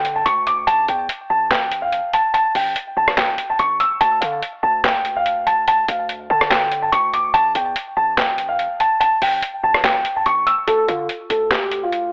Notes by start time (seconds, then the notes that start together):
Already playing: D3 G5
0.05 closed hi-hat
0.16 A5
0.26 D2 C#6, closed hi-hat
0.47 D6, closed hi-hat
0.67 A1 A5, closed hi-hat
0.88 E2 G5, closed hi-hat
1.09 closed hi-hat
1.30 A1 A5
1.51 G5, snare, clap, closed hi-hat
1.72 closed hi-hat
1.82 F5
1.92 closed hi-hat
2.13 A5, closed hi-hat
2.34 A5, closed hi-hat
2.55 A1 G5, open hi-hat
2.76 closed hi-hat
2.97 A1 A5
3.08 cross-stick
3.17 G5, snare, clap, closed hi-hat
3.38 closed hi-hat
3.50 A5
3.59 A1 C#6, closed hi-hat
3.80 E6, closed hi-hat
4.01 D2 A5, closed hi-hat
4.21 D3 F5, closed hi-hat
4.42 closed hi-hat
4.63 D2 A5
4.84 G5, snare, clap, closed hi-hat
5.05 closed hi-hat
5.16 F5
5.26 closed hi-hat
5.47 A5, closed hi-hat
5.68 A5, closed hi-hat
5.88 D2 F5, closed hi-hat
6.09 closed hi-hat
6.30 D3 A5
6.41 cross-stick
6.50 G5, snare, clap, closed hi-hat
6.72 closed hi-hat
6.82 A5
6.92 D2 C#6, closed hi-hat
7.14 D6, closed hi-hat
7.34 A1 A5, closed hi-hat
7.55 E2 G5, closed hi-hat
7.76 closed hi-hat
7.97 A1 A5
8.17 G5, snare, clap, closed hi-hat
8.38 closed hi-hat
8.49 F5
8.59 closed hi-hat
8.80 A5, closed hi-hat
9.00 A5, closed hi-hat
9.22 A1 G5, open hi-hat
9.42 closed hi-hat
9.63 A1 A5
9.74 cross-stick
9.84 G5, snare, clap, closed hi-hat
10.05 closed hi-hat
10.16 A5
10.26 A1 C#6, closed hi-hat
10.47 E6, closed hi-hat
10.67 D2 A4, closed hi-hat
10.88 D3 F4, closed hi-hat
11.09 closed hi-hat
11.30 D2 A4, closed hi-hat
11.51 G4, snare, clap, closed hi-hat
11.71 closed hi-hat
11.83 F4
11.92 closed hi-hat